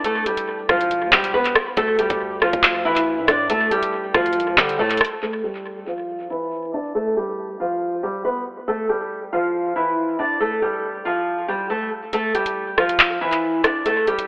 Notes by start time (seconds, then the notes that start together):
0.04 A3 A4, closed hi-hat
0.26 G3 G4, closed hi-hat
0.37 closed hi-hat
0.69 E1 F3 F4, kick, cross-stick
0.81 closed hi-hat
0.91 closed hi-hat
1.02 E2
1.12 E1 G3 G4, kick, clap
1.24 closed hi-hat
1.34 E1 B3 B4
1.45 closed hi-hat
1.55 cross-stick
1.77 D2 A3 A4, kick, closed hi-hat
1.99 G3 G4, closed hi-hat
2.10 D2, kick, closed hi-hat
2.42 F3 F4, cross-stick
2.53 D2, kick, closed hi-hat
2.63 clap
2.85 E3 E4
2.97 closed hi-hat
3.18 A2
3.28 D4 D5, cross-stick, closed hi-hat
3.50 D2 A3 A4, closed hi-hat
3.71 G3 G4, closed hi-hat
3.83 closed hi-hat
4.14 D2 F3 F4, kick, cross-stick
4.26 closed hi-hat
4.33 C2, closed hi-hat
4.40 closed hi-hat
4.47 D2
4.58 D3 G3 G4, kick, clap
4.69 closed hi-hat
4.79 A2 A3 A4
4.91 closed hi-hat
4.97 cross-stick, closed hi-hat
5.05 closed hi-hat
5.22 A3 A4
5.44 G3 G4
5.87 F3 F4
6.30 E3 E4
6.73 D4 D5
6.95 A3 A4
7.17 G3 G4
7.60 F3 F4
8.03 G3 G4
8.25 B3 B4
8.68 A3 A4
8.89 G3 G4
9.33 F3 F4
9.76 E3 E4
10.19 D4 D5
10.40 A3 A4
10.62 G3 G4
11.05 F3 F4
11.48 G3 G4
11.70 A3 A4
12.13 A3 A4, closed hi-hat
12.35 G3 G4, closed hi-hat
12.46 closed hi-hat
12.78 F3 F4, cross-stick
12.89 closed hi-hat
12.99 clap
13.21 E3 E4
13.33 closed hi-hat
13.64 D4 D5, cross-stick, closed hi-hat
13.86 A3 A4, closed hi-hat
14.07 G3 G4, closed hi-hat
14.19 closed hi-hat